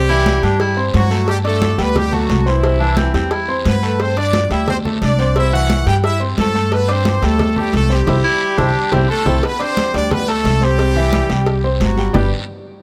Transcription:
Already playing: C2 G3 G4
0.09 E3 E4 E5, high conga
0.26 cowbell, high conga, short guiro
0.43 G2 G3 D4 G4 G5, cowbell, high conga, short guiro
0.60 E4, cowbell, high conga, long guiro
0.77 C4 C5 C6, high conga
0.94 G2 F#3 F#4, cowbell, high conga, short guiro
1.10 A3 A4 A5, high conga, short guiro
1.28 G3 G4, cowbell, high conga, long guiro
1.44 A3 D4 A4 D5 D6, cowbell, high conga
1.62 cowbell, high conga, short guiro
1.78 D2 G3 B3 G4 B4 G5, cowbell, high conga, short guiro
1.96 G3 G4, cowbell, high conga, low conga, long guiro
2.12 F#3 A3 F#4 A4 A5, high conga, low conga
2.29 C2, cowbell, high conga, short guiro
2.46 E3 C4 E4 C5 C6, high conga, short guiro
2.63 C3 C4 C5, cowbell, high conga, long guiro
2.80 E3 D4 E4 E5, high conga
2.97 C4, cowbell, high conga, short guiro
3.14 E2 G3 C4 G4 G5, cowbell, high conga, short guiro
3.31 E4, cowbell, high conga, long guiro
3.48 C4 C5 C6, high conga
3.65 G2 B3 B4, cowbell, high conga, short guiro
3.83 A3 A4 A5, high conga, short guiro
4.00 C4 C5, cowbell, high conga, long guiro
4.17 D4 D5 D6, cowbell, high conga
4.33 cowbell, high conga, short guiro
4.50 D2 G3 E4 G4 E5 G5, cowbell, high conga, short guiro
4.67 C4 C5, cowbell, high conga, low conga, long guiro
4.85 A3 A4 A5, high conga, low conga
5.01 C2 D4 D5, cowbell, high conga, short guiro
5.19 C4 C5 C6, high conga, short guiro
5.36 C3 C4 E4 C5 E5, cowbell, high conga, long guiro
5.53 E3 E4 F#4 E5 F#5, high conga
5.70 cowbell, high conga, short guiro
5.86 G2 G3 G4 G5, cowbell, high conga, short guiro
6.03 E4 E5, cowbell, high conga, long guiro
6.20 C4 C5 C6, high conga
6.38 G2 A3 A4, cowbell, high conga, short guiro
6.55 A3 A4 A5, high conga, short guiro
6.72 B3 B4, cowbell, high conga, long guiro
6.88 C4 D4 C5 D5 D6, cowbell, high conga
7.05 cowbell, high conga, short guiro
7.22 D2 G3 A3 G4 A4 G5, cowbell, high conga, short guiro
7.39 cowbell, high conga, low conga, long guiro
7.56 G3 A3 G4 A4 A5, high conga, low conga
7.73 C2 A3 A4, cowbell, high conga, short guiro
7.90 G3 C4 G4 C5 C6, high conga, short guiro
8.07 C2 E4 G4 C5, cowbell, low conga, long guiro
8.24 E4
8.57 C2 D4 E4 G4 C5, cowbell, low conga, long guiro
8.92 C2 C4 E4 G4 C5, cowbell, low conga, long guiro
9.09 A3 D4 A4
9.25 C2 C4 E4 G4 C5, cowbell, low conga
9.43 B3 B4, cowbell, high conga, long guiro
9.59 C4 D4 C5 D5 D6, cowbell, high conga
9.77 cowbell, high conga, short guiro
9.94 D2 G3 D4 G4 D5 G5, cowbell, high conga, short guiro
10.11 B3 B4, cowbell, high conga, low conga, long guiro
10.27 A3 A4 A5, high conga
10.44 C2, cowbell, high conga, short guiro
10.61 G3 C4 G4 C5 C6, high conga, short guiro
10.78 C3 C4 C5, cowbell, high conga, long guiro
10.96 E3 E4 E5, high conga
11.13 cowbell, high conga, short guiro
11.29 C2 G3 G4 G5, cowbell, high conga, short guiro
11.46 cowbell, high conga, long guiro
11.64 C4 C5 C6, high conga
11.80 G1 F#3 F#4, cowbell, high conga, short guiro
11.97 G3 G4 G5, high conga, short guiro
12.13 G1 G3 D4 G4 B4 D5 G5, low bongo, low conga, long guiro

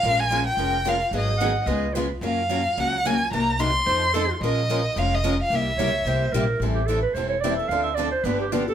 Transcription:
Already playing: F5
0.03 A#1 F3 G#3 C#4 F4 A#4
0.20 G#5
0.32 F3 G#3 C#4 F4 A#4
0.47 G5
0.57 F1 F3 G#3 C#4 F4 A#4
0.86 F3 G#3 C#4 F4 A#4 F5
1.11 G#1 D#3 F#3 B3 D#4 G#4
1.17 D#5
1.38 D#3 F#3 B3 D#4 G#4 F#5
1.66 C#2 C#3 G#3 B3 F4 G#4 D#5
1.94 C#3 G#3 B3 F4 G#4 B4
2.21 F#2 C#3 F3 F#3 A#3 C#4 F4 F#4 A#4 F5
2.49 C#3 F3 F#3 A#3 C#4 F4 F#4 A#4
2.77 C#2 C#3 F3 F#3 A#3 C#4 F4 F#4 A#4 F#5
3.05 C#3 F3 F#3 A#3 C#4 F4 F#4 A#4 G#5
3.31 C2 C3 F#3 A#3 D#4 A#4 A#5
3.59 C3 F#3 A#3 D#4 A#4 C6
3.86 F2 F3 C4 D#4 A4 C5
4.13 F3 C4 D#4 A4
4.41 A#1 F3 G#3 C#4 F4 A#4 D#5
4.69 F3 G#3 C#4 F4 A#4
4.96 F1 F3 G#3 C#4 F4 A#4 F5
5.14 D#5
5.24 F3 G#3 C#4 F4 A#4
5.42 F5
5.50 C2 C3 G3 A#3 E4 G4
5.55 E5
5.77 C#2 C3 G3 A#3 E4 G4 C#5
6.05 C2 C3 G3 A#3 E4 G4 C5
6.32 A#1 C3 G3 A#3 E4 G4 A#4
6.60 A1 E3 G3 C4 E4 A4
6.75 G4
6.86 E3 G3 C4 E4 A4
6.90 A4
7.02 B4
7.14 E1 E3 G3 C4 E4 A4 C5
7.29 C#5
7.41 E3 G3 C4 E4 A4 D5
7.56 A4 E5
7.60 C4 E4
7.68 D2 D3 F3 C4 F5
7.72 D4 A4
7.83 E5
7.95 D5
7.99 D3 F3 C4 D4 A4
8.12 C5
8.24 G1 D3 F3 B3 D4 G4 B4
8.41 G4
8.52 D3 F3 B3 D4 F4 G4
8.68 B3 D4 G4 A4

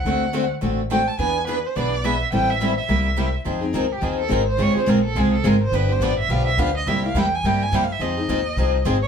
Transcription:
Already playing: F#5
0.04 D2 D3 A3 C4 F#4 A4
0.33 D3 A3 C4 F#4 A4
0.61 A1 D3 A3 C4 F#4 A4
0.91 D3 A3 C4 F#4 A4 G5
1.07 A5
1.18 E2 E3 B3 D4 G#4 B4 G#5
1.47 E3 B3 D4 G#4 B4
1.66 C5
1.75 B1 E3 B3 D4 G#4 B4 D5
2.04 E3 B3 D4 G#4 B4 E5
2.32 A1 E3 G3 C4 E4 A4 G5
2.50 E5
2.61 E3 G3 C4 E4 A4
2.77 E5
2.88 C2 C3 G3 A#3 E4 G4
3.17 C3 G3 A#3 E4 G4
3.45 F2 F3 C4 D#4 G#4
3.61 C4 D#4 G#4
3.73 C#2 F3 C4 D#4 G#4 A#4
3.92 G4
4.01 D#2 F3 C4 D#4 G#4
4.20 A4
4.28 G#1 F3 C4 D#4 G#4 A#4
4.48 C5
4.57 C#2 C#3 G#3 C4 F4 G#4
4.62 C#5
4.74 C4 F4 G#4 C5, muted upright bass stroke
4.86 A#1 C#3 G#3 C4 F4 G#4 A#4
5.05 A4
5.15 C2 C#3 G#3 C4 F4 G#4
5.19 G#4
5.34 A4
5.43 G#1 C#3 G#3 C4 F4 G#4 A#4
5.63 C5
5.72 G1 D3 F3 B3 D4 G4 B4
5.89 B3 D4 G4 C5
6.00 A1 D3 F3 B3 D4 G4 D5
6.19 E5
6.28 B1 D3 F3 B3 D4 G4 F5
6.47 E5
6.57 D2 D3 F3 B3 D4 G4 F5
6.77 D#5
6.86 C2 C3 G3 A#3 E4 G4 E5
7.04 A#3 E4 G4 F5
7.14 E2 C3 G3 A#3 E4 G4
7.19 G5
7.35 G#5
7.43 G2 C3 G3 A#3 E4 G4 G5
7.63 G#5
7.72 F#2 C3 G3 A#3 E4 G4 G5
7.84 F5
7.92 E5
7.99 F2 F3 C4 D#4 G#4 D#5
8.17 C4 D#4 G#4
8.28 D#2 F3 C4 D#4 G#4
8.56 C2 F3 C4 D#4 G#4
8.85 G#1 F3 C4 D#4 G#4
9.03 C#5

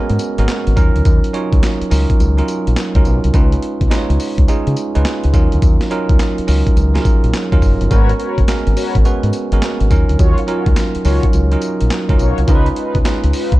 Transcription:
Already playing: G#3 B3 C#4 F#4 A#4
0.10 G#2, closed hi-hat
0.19 closed hi-hat, tambourine
0.38 G#1 G#3 B3 C#4 F#4 A#4, closed hi-hat
0.48 snare, clap, closed hi-hat, tambourine
0.67 G#1, closed hi-hat
0.76 D#2 F#3 C#4 D#4 F4 A#4, kick, closed hi-hat, tambourine
0.96 D2, closed hi-hat
1.05 D#2, kick, closed hi-hat, tambourine
1.24 closed hi-hat
1.33 F#3 C#4 D#4 F4 C#5, closed hi-hat
1.53 C#2, kick, closed hi-hat
1.63 snare, clap, closed hi-hat, tambourine
1.81 muted fingered electric bass stroke, closed hi-hat
1.90 C#2 F#3 C#4 D#4 F4 A#4, open hi-hat, tambourine
2.10 kick, closed hi-hat
2.20 C#2, closed hi-hat, tambourine
2.38 F#3 C#4 D#4 F4 A#4, closed hi-hat
2.48 closed hi-hat, tambourine
2.67 A#1, closed hi-hat
2.76 snare, clap, closed hi-hat, tambourine
2.95 C#2 F#3 C#4 D#4 F4 A#4, kick, closed hi-hat
3.05 B1, closed hi-hat, tambourine
3.24 C2, closed hi-hat
3.34 C#2 G#3 C#4 D#4 F4 B4, kick, closed hi-hat, tambourine
3.52 closed hi-hat
3.62 closed hi-hat
3.81 B1, kick, closed hi-hat
3.90 G#3 C#4 D#4 F4 B4, snare, clap, closed hi-hat, tambourine
3.98 C#5
4.10 C#2, closed hi-hat
4.20 open hi-hat, tambourine
4.38 C#2, kick, closed hi-hat
4.48 G#3 C#4 D#4 F4 G#4, closed hi-hat, tambourine
4.67 C#3, closed hi-hat
4.76 closed hi-hat, tambourine
4.95 C#2 G#3 C#4 D#4 F4 B4, closed hi-hat
5.05 snare, clap, closed hi-hat, tambourine
5.24 C#2, closed hi-hat
5.33 D#2 F#3 C#4 D#4 F4 A#4, kick, closed hi-hat, tambourine
5.52 D2, closed hi-hat
5.62 D#2, kick, closed hi-hat, tambourine
5.81 snare, closed hi-hat
5.91 F#3 C#4 D#4 F4 A#4, closed hi-hat
6.09 C#2, kick, closed hi-hat
6.19 snare, clap, closed hi-hat, tambourine
6.38 muted fingered electric bass stroke, closed hi-hat
6.47 C#2 F#3 C#4 D#4 F4 A#4, open hi-hat, tambourine
6.67 kick, closed hi-hat
6.77 C#2, closed hi-hat, tambourine
6.94 F#3 C#4 D#4 F4 G#4, snare, closed hi-hat
7.02 A#4, kick, closed hi-hat, tambourine
7.24 A#1, closed hi-hat
7.34 snare, clap, closed hi-hat, tambourine
7.52 D#2 F#3 C#4 D#4 F4 A#4, kick, closed hi-hat
7.62 F#1, kick, open hi-hat, tambourine
7.81 G1, closed hi-hat
7.90 G#1 G#3 A#3 C#4 F#4 A#4 B4 C#5, kick, closed hi-hat, tambourine
7.97 B3
8.09 closed hi-hat
8.18 F#4 A#4 B4 C#5, closed hi-hat
8.38 F#1, kick, closed hi-hat
8.48 G#3 B3 C#4 F#4 A#4, muted fingered electric bass stroke, snare, clap, closed hi-hat, tambourine
8.67 G#1, closed hi-hat
8.76 F#4 A#4 B4 C#5, open hi-hat, tambourine
8.95 G#1, kick, closed hi-hat
9.04 G#3 B3 C#4 F#4 B4, closed hi-hat, tambourine
9.23 G#2, closed hi-hat
9.33 closed hi-hat, tambourine
9.52 G#1 G#3 B3 C#4 F#4 A#4, closed hi-hat
9.62 snare, clap, closed hi-hat, tambourine
9.80 G#1, closed hi-hat
9.91 D#2 F#3 C#4 D#4 F4 A#4, kick, closed hi-hat, tambourine
10.09 D2, closed hi-hat
10.19 D#2 F4 F#4 C#5, kick, closed hi-hat, tambourine
10.38 closed hi-hat
10.47 F#3 C#4 D#4 F4 F#4 A#4 C#5, closed hi-hat
10.66 C#2, kick, closed hi-hat
10.76 snare, clap, closed hi-hat, tambourine
10.95 muted fingered electric bass stroke, closed hi-hat
11.04 C#2 F#3 C#4 D#4 F4 F#4 A#4 C#5, open hi-hat, tambourine
11.23 kick, closed hi-hat
11.33 C#2, closed hi-hat, tambourine
11.51 F#3 C#4 D#4 F4 A#4, closed hi-hat
11.61 closed hi-hat, tambourine
11.81 A#1, closed hi-hat
11.90 snare, clap, closed hi-hat, tambourine
12.09 C#2 F#3 C#4 D#4 F4 A#4, kick, closed hi-hat
12.19 B1 F4 F#4 C#5, closed hi-hat, tambourine
12.38 C2, closed hi-hat
12.47 C#2 G#3 C#4 D#4 F4 A#4 B4, kick, closed hi-hat, tambourine
12.55 B4
12.66 closed hi-hat
12.76 D#4 F4 B4, closed hi-hat
12.95 B1, kick, closed hi-hat
13.05 G#3 C#4 D#4 F4 B4, muted fingered electric bass stroke, snare, clap, closed hi-hat, tambourine
13.24 C#2, closed hi-hat
13.33 D#4 F4 B4, open hi-hat, tambourine
13.52 C#2, kick, closed hi-hat

